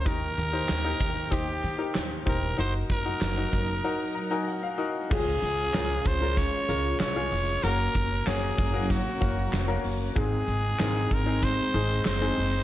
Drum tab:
CC |--------|--------|x-------|--------|
HH |xxxxxxxx|xxxx----|-xxxxxxo|xxxxxxxo|
CP |--x---x-|--x-----|--x---x-|--x---x-|
SD |--o---o-|--o-----|--o-o-o-|--o-o-o-|
BD |o--oo--o|-o-o----|o--oo---|-o-ooo--|

CC |--------|
HH |xxxxxxxo|
CP |--x---x-|
SD |--o-o-o-|
BD |o--oo---|